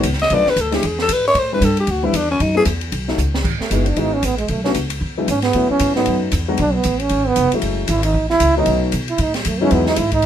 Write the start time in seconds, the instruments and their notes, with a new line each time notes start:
0.03 upright bass C#2, hi-hat pedal, ride
0.13 snare
0.19 alto saxophone D#5, snare, ride
0.30 upright bass B1, grand piano A3 C#4 D4 F4 B4, ride
0.34 alto saxophone D5
0.46 alto saxophone B4, muted upright bass stroke, snare
0.56 upright bass D2, hi-hat pedal, ride
0.61 alto saxophone A4
0.71 grand piano G#3 C4 D4 E4 G#4, alto saxophone G4, snare, ride
0.83 upright bass E2, alto saxophone G#4, ride
0.99 alto saxophone A4, snare
1.09 upright bass G#2, hi-hat pedal, ride
1.13 alto saxophone B4
1.28 alto saxophone C#5
1.35 upright bass A2, ride
1.39 alto saxophone C5
1.52 grand piano G3 C4 D4 E4 B4, alto saxophone B4
1.61 upright bass G2, alto saxophone A4, hi-hat pedal, ride
1.77 alto saxophone G4, ride
1.87 upright bass D2, alto saxophone F#4, ride
2.03 grand piano G3 C4 D4 E4 B4, alto saxophone E4
2.13 upright bass E2, alto saxophone D4, hi-hat pedal, ride
2.31 alto saxophone C#4
2.40 upright bass F#2, alto saxophone D#4, ride
2.55 grand piano A3 B3 C#4 E4 G#4, alto saxophone G#4
2.65 upright bass E2, hi-hat pedal, ride
2.81 ride
2.92 upright bass B1, ride
3.08 grand piano A3 C#4 D#4 F#4 A4, snare
3.18 upright bass C#2, hi-hat pedal
3.34 snare
3.44 upright bass G#1, kick, crash
3.59 trombone A3, muted upright bass stroke, snare
3.70 upright bass F#1, grand piano G#3 B3 D#4 E4 F#4, trombone B3, hi-hat pedal, ride
3.86 trombone D4, ride
3.96 upright bass G#1, grand piano G#3 B3 D#4 E4 F#4, trombone D#4, ride
4.14 trombone C#4
4.23 upright bass A1, trombone B3, hi-hat pedal, ride
4.38 trombone G#3, ride
4.48 upright bass B1, trombone A3, ride
4.64 grand piano A3 B3 C#4 D4 F#4, trombone C#4, snare
4.74 upright bass C#2, hi-hat pedal, ride
4.90 ride
5.01 upright bass E2
5.18 grand piano F#3 G#3 B3 D4 E4
5.28 upright bass G#2, trombone C#4, hi-hat pedal, ride
5.42 trombone B3, snare, ride
5.53 upright bass A2, grand piano F#3 A3 B3 C#4 E4, ride
5.70 trombone C#4, muted upright bass stroke
5.79 upright bass G#2, hi-hat pedal, ride
5.96 grand piano F#3 A3 B3 C#4 D#4, trombone B3, snare
6.06 upright bass F#2, ride
6.32 upright bass E2, hi-hat pedal, ride
6.48 grand piano F#3 G#3 B3 D4 F#4
6.57 upright bass B1, trombone D4, ride
6.74 trombone B3
6.83 upright bass A1, hi-hat pedal, ride
7.00 trombone C#4, ride
7.09 upright bass G#1, ride
7.28 trombone B3
7.36 upright bass F1, hi-hat pedal, ride
7.52 grand piano F#3 G#3 A3 C#4 E4, muted upright bass stroke, ride
7.62 upright bass F#1, ride
7.88 upright bass G#1, trombone E4, hi-hat pedal, ride
8.03 trombone D#4, ride
8.14 upright bass A1
8.30 trombone E4, snare
8.40 upright bass C#2, hi-hat pedal, ride
8.57 grand piano F#3 A3 B3 C#4 D#4, trombone D#4
8.66 upright bass B1, ride
8.92 upright bass B2, hi-hat pedal, ride
9.08 trombone E4, ride
9.18 upright bass A2, trombone D#4, ride
9.34 trombone F#3, snare, ride
9.45 upright bass F#2, trombone A3, hi-hat pedal, ride
9.61 grand piano F#3 G#3 B3 D#4 E4, trombone C#4
9.71 upright bass E2, trombone B3, ride
9.86 trombone D#4, snare
9.96 upright bass G#2, trombone E4, hi-hat pedal, ride
10.12 trombone D#4, kick, ride
10.22 ride